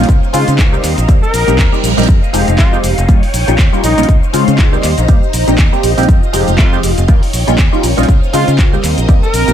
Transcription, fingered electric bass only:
0.09 0.18 C#2 loud
0.34 0.43 C#3 medium
0.48 0.60 C#3 medium
0.59 0.77 C#2 loud
0.84 0.93 D#2 loud
0.98 1.05 A#1 loud
1.09 1.18 D#2 loud
1.34 1.43 A#1 medium
1.48 1.58 A#1 medium
1.58 1.68 D#2 medium
1.83 1.93 A#1 medium
1.98 2.05 A#1 loud
2.09 2.18 F2 loud
2.33 2.43 F1 medium
2.48 2.60 F1 medium
2.59 2.76 F2 loud
2.84 2.93 F1 loud
2.98 3.05 F1 loud
3.09 3.18 D#2 medium
3.34 3.43 A#1 medium
3.48 3.55 A#1 medium
3.59 3.68 D#2 loud
3.84 3.93 A#1 loud
3.98 4.05 A#1 medium
4.09 4.18 C#2 loud
4.33 4.43 C#3 medium
4.48 4.60 C#3 medium
4.59 4.76 C#2 loud
4.84 4.93 D#2 loud
4.98 5.05 A#1 loud
5.34 5.43 A#1 medium
5.48 5.55 A#1 medium
5.58 5.68 D#2 loud
5.83 5.93 A#1 loud
5.98 6.05 A#1 medium
6.09 6.18 F2 loud
6.34 6.43 F1 medium
6.48 6.60 F1 medium
6.59 6.76 F2 loud
6.84 6.93 F1 loud
6.98 7.05 F1 loud
7.08 7.18 D#2 medium
7.33 7.43 A#1 medium
7.48 7.55 A#1 medium
7.83 7.93 A#1 loud
7.98 8.05 A#1 medium
8.09 8.18 C#2 loud
8.34 8.43 C#3 medium
8.48 8.60 C#3 medium
8.59 8.76 C#2 loud
8.83 8.93 D#2 loud
8.98 9.05 A#1 loud
9.09 9.18 D#2 loud
9.34 9.43 A#1 medium
9.48 9.53 A#1 medium

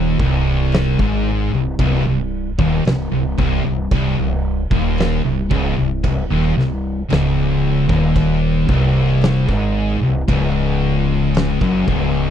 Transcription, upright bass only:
0.00 0.16 D#1 loud
0.20 0.96 C1 loud
0.99 1.49 G#1 loud
1.54 1.78 C1 medium
1.79 2.04 C1 loud
2.07 2.56 C1 medium
2.59 2.83 D#1 loud
2.85 3.10 C1 medium
3.12 3.37 C1 medium
3.39 3.63 C1 loud
3.65 3.90 C1 medium
3.91 4.16 C1 medium
4.19 4.68 C1 medium
4.71 5.20 D#1 loud
5.25 5.49 C1 medium
5.51 5.76 C#1 loud
5.78 6.02 C1 medium
6.04 6.29 C1 medium
6.30 6.55 D#1 loud
6.58 7.06 C1 medium
7.11 7.86 C#1 loud
7.90 8.65 D#1 loud
8.69 9.44 C1 loud
9.49 9.98 G#1 loud
10.01 10.26 C1 medium
10.28 11.57 C#1 loud
11.62 11.86 F#1 loud
11.88 12.30 C#1 medium

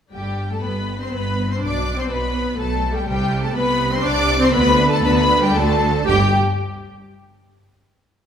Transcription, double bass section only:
0.12 0.57 G1 soft
0.62 1.06 G1 soft
1.12 1.56 G1 soft
1.61 2.04 B1 medium
2.10 2.53 B1 soft
2.58 3.01 B1 medium
3.07 3.50 C2 medium
3.55 3.98 C2 medium
4.04 4.48 C2 medium
4.54 4.98 D2 medium
5.03 5.49 D2 medium
5.54 6.01 D2 medium
6.06 6.36 G1 medium

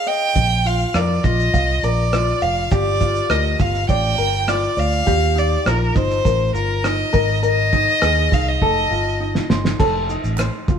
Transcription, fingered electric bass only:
0.35 0.84 A#1 loud
0.94 1.19 F2 medium
1.24 1.48 A#1 medium
1.54 1.78 C2 medium
1.83 2.31 A#1 medium
2.42 2.66 F1 medium
2.71 3.20 G1 loud
3.30 3.54 D2 medium
3.60 3.84 G1 medium
3.89 4.13 A1 medium
4.18 4.67 G1 medium
4.77 5.02 D2 medium
5.07 5.55 D#2 medium
5.66 5.90 A#1 medium
5.96 6.20 G1 medium
6.25 6.50 A1 medium
6.54 7.03 G1 medium
7.14 7.87 G#1 medium
8.02 8.27 D#2 medium
8.32 8.56 C2 medium
8.61 8.86 F1 loud
8.91 9.39 G1 medium
9.50 9.74 G1 medium
9.80 10.16 F1 loud
10.24 10.48 A1 medium
10.68 10.79 F1 medium

